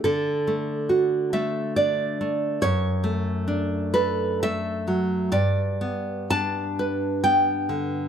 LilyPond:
\new Staff \with { instrumentName = "Nylon-string guitar" } { \time 3/4 \key d \major \tempo 4 = 67 << { a'4. e''8 d''4 | cis''4. b'8 e''4 | d''4 a''4 g''4 | } \\ { d8 a8 fis'8 a8 d'8 a8 | fis,8 a8 d'8 a'8 a8 fis8 | g,8 b8 d'8 b'8 b8 d8 | } >> }